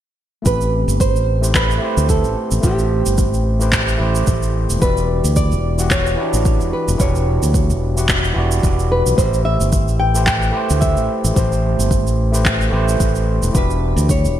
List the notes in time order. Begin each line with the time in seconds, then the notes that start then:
0.42 A1 A3 E4 G4, kick, shaker
0.46 C4 A4 B4
0.61 shaker
0.88 G1, shaker
1.00 C5, kick, shaker
1.15 A1, shaker
1.41 A3 E4 G4 B4 C5, shaker
1.55 B4, kick, clap, shaker
1.71 shaker
1.78 A3 E4 G4
1.83 B4 C5
1.97 D2, shaker
2.09 A4, kick, shaker
2.24 A1, shaker
2.51 A1, shaker
2.61 A1 A3 E4 G4, kick, shaker
2.65 B4 C5
2.79 shaker
3.06 G1, shaker
3.18 kick, shaker
3.33 A1, shaker
3.59 A3 E4 G4 B4 C5, shaker
3.73 kick, clap, shaker
3.88 shaker
3.97 A1 A3 E4 G4 B4
4.03 C5
4.15 shaker
4.27 A1, kick, shaker
4.43 shaker
4.70 E1, shaker
4.78 E1 E3 E4 F#4 B4, kick, shaker
4.83 G4 D5
4.97 shaker
5.24 D2, shaker
5.36 D5, kick, shaker
5.52 E1, shaker
5.78 E3 E4 F#4 G4 F#5, shaker
5.91 C#5, kick, clap, shaker
6.07 shaker
6.16 E3 E4 F#4
6.20 D4 G4
6.33 A1, shaker
6.45 kick, shaker
6.61 E1, shaker
6.73 B4
6.88 E1, shaker
6.97 E1 E3 E4 F#4, kick, shaker
7.01 D4 G4 C#5
7.15 shaker
7.43 D2, shaker
7.54 kick, shaker
7.70 E1, shaker
7.96 E3 E4 F#4 G4 F#5, shaker
8.09 kick, clap, shaker
8.24 shaker
8.33 E1 E3 E4 F#4
8.38 G4 D5
8.51 shaker
8.63 E1, kick, shaker
8.79 shaker
8.92 B4
9.06 B1, shaker
9.16 A1 A3 E4 G4 C5, kick, shaker
9.20 B4 C5
9.34 shaker
9.45 E5
9.61 G1, shaker
9.72 kick, shaker
9.88 A1, shaker
10.00 G5
10.14 A3 E4 G4 B4 C5, shaker
10.26 G5, kick, clap, shaker
10.42 shaker
10.51 A3 E4 G4
10.55 B4 C5
10.70 D2, shaker
10.81 E5, kick, shaker
10.97 A1, shaker
11.24 A1, shaker
11.33 A1 A3 E4 G4 C5, kick, shaker
11.37 A4 C5
11.52 shaker
11.79 G1, shaker
11.91 kick, shaker
12.06 A1, shaker
12.32 A3 E4 G4 B4 C5, shaker
12.46 kick, clap, shaker
12.61 shaker
12.70 A1 A3 E4 G4
12.74 B4 C5
12.88 shaker
13.00 A1, kick, shaker
13.15 shaker
13.43 E1, shaker
13.51 E1 E3 E4 F#4, kick, shaker
13.56 D4 G4 B4
13.70 shaker
13.96 D2, shaker
14.09 C#5, kick, shaker
14.24 E1, shaker